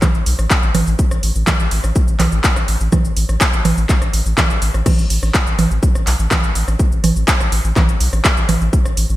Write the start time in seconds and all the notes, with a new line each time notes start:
0.02 kick, cross-stick, clap, low conga, shaker
0.15 A1, shaker
0.26 B1, open hi-hat, shaker
0.39 A1, cross-stick, shaker
0.50 kick, clap, shaker
0.63 A1, shaker
0.75 A1, cross-stick, open hi-hat, low conga, shaker
0.87 A1, shaker
0.99 kick, shaker
1.11 A1, cross-stick, shaker
1.23 A1, open hi-hat, shaker
1.35 A1, shaker
1.47 kick, cross-stick, clap, low conga, shaker
1.60 A1, shaker
1.71 A1, open hi-hat, shaker
1.84 A1, cross-stick, shaker
1.96 kick, shaker
2.08 A1, shaker
2.20 B1, cross-stick, clap, open hi-hat, low conga, shaker
2.32 A1, shaker
2.44 kick, clap, shaker
2.56 A1, cross-stick, shaker
2.68 A1, open hi-hat, shaker
2.81 A1, shaker
2.92 kick, cross-stick, low conga, shaker
3.05 A1, shaker
3.17 A1, open hi-hat, shaker
3.29 A1, cross-stick, shaker
3.41 kick, clap, shaker
3.53 A1, shaker
3.65 A1, cross-stick, open hi-hat, low conga, shaker
3.77 A1, shaker
3.89 kick, clap, shaker
4.02 A1, cross-stick, shaker
4.13 A1, open hi-hat, shaker
4.26 A1, shaker
4.38 kick, cross-stick, clap, low conga, shaker
4.50 A1, shaker
4.62 A1, open hi-hat, shaker
4.74 A1, cross-stick, shaker
4.86 kick, cross-stick, crash, low conga, shaker
4.98 A1, shaker
5.10 A1, open hi-hat, shaker
5.23 A1, cross-stick, shaker
5.34 kick, clap, shaker
5.47 A1, shaker
5.58 A1, cross-stick, open hi-hat, low conga, shaker
5.71 A1, shaker
5.83 kick, shaker
5.95 A1, cross-stick, shaker
6.07 B1, clap, open hi-hat, shaker
6.19 A1, shaker
6.31 kick, cross-stick, clap, low conga, shaker
6.43 A1, shaker
6.55 A1, open hi-hat, shaker
6.68 A1, cross-stick, shaker
6.79 kick, shaker
6.92 A1, shaker
7.04 A1, cross-stick, open hi-hat, low conga, shaker
7.16 A1, shaker
7.28 kick, clap, shaker
7.40 A1, cross-stick, shaker
7.52 A1, open hi-hat, shaker
7.64 A1, shaker
7.76 kick, cross-stick, clap, low conga, shaker
7.89 A1, shaker
8.00 B1, open hi-hat, shaker
8.13 A1, cross-stick, shaker
8.25 kick, clap, shaker
8.37 A1, shaker
8.49 A1, cross-stick, open hi-hat, low conga, shaker
8.61 A1, shaker
8.73 kick, shaker
8.85 A1, cross-stick, shaker
8.97 A1, open hi-hat, shaker
9.10 A1, shaker